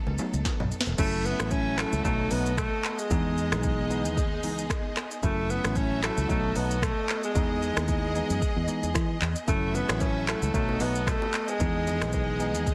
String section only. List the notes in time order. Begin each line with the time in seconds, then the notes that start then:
Already playing: F#3 B3 D#4 A4
0.99 C#4 F#4 A4 E5
2.05 B3 D#5
3.11 D#4 G#4
5.23 C#4 F#4 A4 E5
6.29 B3 D#5
7.36 G#4
9.48 C#4 F#4 A4 E5
10.54 B3 D#5
11.60 D#4 G#4